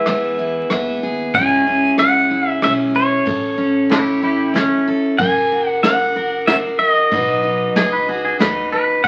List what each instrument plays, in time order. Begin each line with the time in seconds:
Already playing: steel-string acoustic guitar B3 E4 G#4, pedal steel guitar E5
0.06 upright bass E2, steel-string acoustic guitar G#3, cross-stick, ride
0.39 steel-string acoustic guitar E4
0.70 upright bass D#2, steel-string acoustic guitar G#3 B3, cross-stick, ride
1.03 steel-string acoustic guitar G#4
1.34 upright bass C#2, steel-string acoustic guitar C#3 G#3 C#4 E4, pedal steel guitar G#5, kick, ride
1.38 steel-string acoustic guitar G#4
1.67 steel-string acoustic guitar C#4
1.98 upright bass C#2, steel-string acoustic guitar G#3, pedal steel guitar F#5, cross-stick, ride
2.31 steel-string acoustic guitar E4
2.49 pedal steel guitar E5
2.62 upright bass B1, steel-string acoustic guitar G#3 C#4, pedal steel guitar E5, cross-stick, ride
2.95 steel-string acoustic guitar G#4, pedal steel guitar C#5
3.25 upright bass A1, steel-string acoustic guitar A2 A4, kick, ride
3.58 steel-string acoustic guitar C#4
3.89 steel-string acoustic guitar A3, clean electric guitar E4 G4, snare, ride
4.22 steel-string acoustic guitar E4, clean electric guitar E4 G4
4.54 steel-string acoustic guitar A3 C#4, clean electric guitar C#4, snare, ride
4.88 steel-string acoustic guitar A4
5.18 upright bass F#1, steel-string acoustic guitar F#3 A#4, pedal steel guitar G#5, kick, ride
5.52 steel-string acoustic guitar F#4
5.69 pedal steel guitar F#5
5.83 steel-string acoustic guitar C#4, pedal steel guitar F#5, snare, ride
6.16 steel-string acoustic guitar A#4
6.47 steel-string acoustic guitar C#4 F#4, pedal steel guitar E5, snare, ride
6.79 steel-string acoustic guitar A#4, pedal steel guitar D#5
7.11 upright bass B1, steel-string acoustic guitar B2 F#3 D#4 F#4 B4, kick, ride
7.44 steel-string acoustic guitar D#4
7.75 upright bass C#2, steel-string acoustic guitar F#3, clean electric guitar G#4, snare, ride
7.93 clean electric guitar B4
8.08 steel-string acoustic guitar F#4, clean electric guitar G#4
8.25 clean electric guitar G#4
8.39 upright bass D#2, steel-string acoustic guitar F#3 D#4, clean electric guitar B4, snare, ride
8.72 steel-string acoustic guitar B4, clean electric guitar B4
9.04 upright bass E2, steel-string acoustic guitar E3 G#4, pedal steel guitar F#5, kick, ride